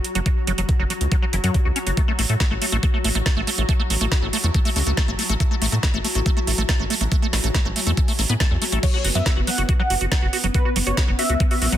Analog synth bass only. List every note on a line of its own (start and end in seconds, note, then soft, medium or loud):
0.15 0.22 F#1 medium
0.47 0.54 F#1 medium
0.58 0.64 F#1 medium
0.79 0.86 F#1 medium
1.01 1.07 C#2 medium
1.33 1.39 F#1 medium
1.44 1.50 F#2 medium
1.65 1.71 C#2 medium
1.87 1.93 F#1 medium
2.19 2.25 A1 medium
2.29 2.36 A2 medium
2.51 2.57 A1 medium
2.72 2.79 A1 medium
3.04 3.11 A1 medium
3.15 3.21 A1 medium
3.37 3.43 A1 medium
3.58 3.64 A1 medium
3.90 3.97 A1 medium
4.01 4.07 A1 medium
4.22 4.29 A1 medium
4.44 4.50 E2 medium
4.76 4.82 C#2 loud
4.87 4.93 C#2 medium
5.08 5.14 A1 medium
5.29 5.36 A1 medium
5.62 5.68 A1 medium
5.72 5.79 A2 medium
5.94 6.00 A1 medium
6.15 6.22 A1 medium
6.47 6.54 A1 medium
6.58 6.64 A1 medium
6.79 6.86 A1 medium
7.01 7.07 A1 medium
7.33 7.39 A1 loud
7.44 7.50 A1 medium
7.65 7.72 A1 medium
7.87 7.93 E2 medium
8.19 8.25 A1 medium
8.29 8.36 A2 medium
8.51 8.57 E2 medium
8.72 8.79 A1 medium
9.04 9.11 F#1 medium
9.15 9.22 F#2 medium
9.37 9.43 F#1 medium
9.58 9.64 F#1 medium
9.90 9.97 F#1 medium
10.01 10.07 F#1 medium
10.22 10.29 F#1 medium
10.44 10.50 F#1 medium
10.76 10.82 F#1 medium
10.87 10.93 F#1 medium
11.08 11.14 F#1 medium
11.29 11.36 C#2 medium
11.62 11.68 A#1 medium
11.72 11.78 A#1 medium